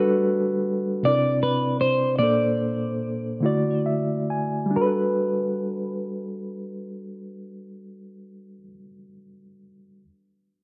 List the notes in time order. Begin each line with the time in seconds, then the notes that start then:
Already playing: G3 D4 F#4 A4 B4
1.03 C3 C4 D4 E4 D5
1.08 A#4
1.15 D5
1.43 B4
1.81 C5
2.19 A#2 A#3 D4 D5
2.23 A4 C5
3.40 D3 A3 E4
3.45 F#4 D5
3.86 E5
4.30 G#5
4.66 G3
4.71 D4
4.76 F#4 B4
4.81 A4
4.86 B4